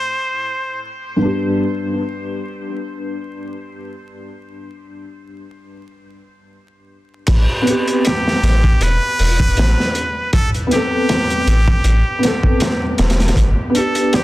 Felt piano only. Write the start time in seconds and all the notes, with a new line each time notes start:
Already playing: A2 A3 C4 E4 G4
1.16 G2 B3
1.22 D4 G4
7.62 B3
7.66 C4
7.70 G4
10.67 B3 C4
10.75 A4
12.19 B3 C4
12.27 A4
13.70 B3
13.74 D4 G4